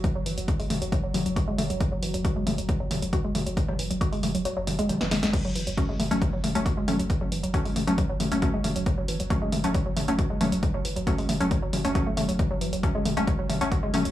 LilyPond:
<<
  \new Staff \with { instrumentName = "Synth stab" } { \time 4/4 \key fis \minor \tempo 4 = 136 r1 | r1 | r1 | r4 <fis a cis'>8 r16 <fis a cis'>16 r8. <fis a cis'>16 r8 <fis a cis'>16 r16 |
r4 <fis a cis'>8 r16 <fis a cis'>16 r8. <fis a cis'>16 <fis a cis'>16 r8. | r4 <fis a cis'>8 r16 <fis a cis'>16 r8. <fis a cis'>16 r8 <fis a cis'>16 r16 | r4 <fis a cis'>8 r16 <fis a cis'>16 r8. <fis a cis'>16 <fis a cis'>16 r8. | r4 <fis a cis'>8 r16 <fis a cis'>16 r8. <fis a cis'>16 r8 <fis a cis'>16 r16 | }
  \new Staff \with { instrumentName = "Ambient pad" } { \clef bass \time 4/4 \key fis \minor fis1~ | fis1~ | fis1 | fis1~ |
fis1~ | fis1~ | fis1~ | fis1 | }
  \new Staff \with { instrumentName = "Synth arpeggio sound" } { \clef bass \time 4/4 \key fis \minor fis16 fis16 e16 fis16 fis'16 gis16 a16 fis16 fis16 fis16 fis16 fis16 fis'16 gis16 a16 fis16 | fis16 fis16 e16 fis16 fis'16 gis16 a16 fis16 fis16 fis16 fis16 fis16 fis'16 gis16 a16 fis16 | fis16 fis16 e16 fis16 fis'16 gis16 a16 fis16 fis16 fis16 fis16 gis16 fis16 e16 gis16 gis16 | fis16 fis16 e16 fis16 fis'16 gis16 a16 fis16 fis16 fis16 a16 fis16 fis'16 gis16 a16 fis16 |
fis16 fis16 e16 fis16 fis'16 gis16 a16 fis16 fis16 fis16 a16 fis16 fis'16 gis16 a16 fis16 | fis16 fis16 e16 fis16 fis'16 gis16 a16 fis16 fis16 fis16 a16 fis16 fis'16 gis16 a16 fis16 | fis16 fis16 e16 fis16 fis'16 gis16 a16 fis16 fis16 fis16 fis16 fis16 fis16 a16 a16 fis16 | fis16 fis16 e16 fis16 fis'16 gis16 a16 gis16 fis16 fis16 a16 fis16 fis'16 gis16 a16 fis16 | }
  \new Staff \with { instrumentName = "Sub bass" } { \clef bass \time 4/4 \key fis \minor r16 fis,,16 fis,,16 fis,,16 r16 fis,,16 fis,,16 fis,,16 r16 fis,,16 fis,,16 fis,,16 r16 fis,,16 fis,,16 fis,,16 | r16 fis,,16 fis,,16 fis,,16 r16 fis,,16 fis,,16 fis,,16 r16 fis,,16 fis,,16 fis,,16 r16 fis,,16 fis,,16 fis,,16 | r16 fis,,16 fis,,16 fis,,16 r16 fis,,16 fis,,16 fis,,16 r16 fis,,16 fis,,16 fis,,16 r16 fis,,16 fis,,16 fis,,16 | r16 fis,,16 fis,,16 fis,,16 r16 fis,,16 fis,,16 fis,,16 r16 fis,,16 fis,,16 fis,,16 r16 fis,,16 fis,,16 fis,,16 |
r16 fis,,16 fis,,16 fis,,16 r16 fis,,16 fis,,16 fis,,16 r16 fis,,16 fis,,16 fis,,16 r16 fis,,16 fis,,16 fis,,16 | r16 fis,,16 fis,,16 fis,,16 r16 fis,,16 fis,,16 fis,,16 r16 fis,,16 fis,,16 fis,,16 r16 fis,,16 fis,,16 fis,,16 | r16 fis,,16 fis,,16 fis,,16 r16 fis,,16 fis,,16 fis,,16 r16 fis,,16 fis,,16 fis,,16 r16 fis,,16 fis,,16 fis,,16 | r16 fis,,16 fis,,16 fis,,16 r16 fis,,16 fis,,16 fis,,16 r16 fis,,16 fis,,16 fis,,16 r16 fis,,16 fis,,16 fis,,16 | }
  \new DrumStaff \with { instrumentName = "Drums" } \drummode { \time 4/4 <hh bd>8 hho16 hh16 <hh bd>16 hho16 <hho toml>16 hh16 <hh bd>8 <hho toml>16 hh16 <hh bd>8 <hho toml>16 hh16 | <hh bd>8 hho16 hh16 <hh bd>8 <hho toml>16 hh16 <hh bd>8 <hho toml>16 hh16 <hh bd>8 <hho toml>16 hh16 | <hh bd>16 toml16 hho16 hh16 <hh bd>16 hho16 <hho toml>16 hh16 hh8 <hho toml>16 hh16 <hh toml>16 sn16 <hho sn toml>16 <hh sn>16 | <cymc hh bd>8 hho16 hh16 <hh bd>8 <hho toml>16 hh16 <hh bd>8 <hho toml>16 hh16 <hh bd>8 <hho toml>16 hh16 |
<hh bd>8 hho16 hh16 <hh bd>16 hho16 <hho toml>16 hh16 <hh bd>8 <hho toml>16 hh16 <hh bd>8 <hho toml>16 hh16 | <hh bd>8 hho16 hh16 <hh bd>8 <hho toml>16 hh16 <hh bd>8 <hho toml>16 hh16 <hh bd>8 <hho toml>16 hh16 | <hh bd>8 hho16 hh16 <hh bd>16 hho16 <hho toml>16 hh16 <hh bd>8 <hho toml>16 hh16 <hh bd>8 <hho toml>16 hh16 | <hh bd>8 hho16 hh16 <hh bd>8 <hho toml>16 hh16 <hh bd>8 <hho toml>16 hh16 <hh bd>8 <hho toml>16 hh16 | }
>>